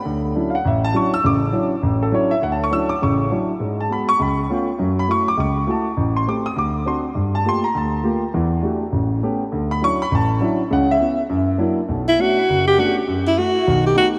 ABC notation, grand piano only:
X:1
M:4/4
L:1/8
Q:"Swing" 1/4=203
K:D
V:1 name="Grand piano"
z3 [=f^f] e a c' e' | d'2 z3 A c e | (3f a c' e' d' c'3 z | z a b c' b2 g z |
z b c' d' c'2 a z | z =c' d' _e' d'2 c' z | z a =c' _b a2 z2 | z8 |
z b c' b a2 z2 | f e2 z4 z | [K:F#phr] z8 | z8 |]
V:2 name="Grand piano"
D,,2 [F,CDE] z A,,,2 [F,CDE] z | [A,,,C,]2 [F,CDE] z A,,,2 [F,CDE] z | D,,2 [F,CDE] z [A,,,C,]2 [F,CDE] z | [^G,,^G,]2 [G,B,F] z C,,2 [A,B,C^E] z |
[F,,F,]2 [A,EF] z C,,2 [A,EF] z | A,,,2 [A,=CG] z D,,2 [CDF] z | G,,2 [A,_B,=FG] z D,,2 [A,B,FG] z | [E,,E,]2 [A,DEFG] z A,,,2 [A,B,CG] z |
D,,2 [F,CDE] z A,,,2 [F,CDE] z | [C,,C,]2 [B,CE] z F,,2 [F,^A,DE] z | [K:F#phr] [B,,,B,,]2 [A,B,CD] z F,,,2 [A,B,CD] z | F,,2 [A,EF] z [B,,,^D,]2 [A,B,^DG] z |]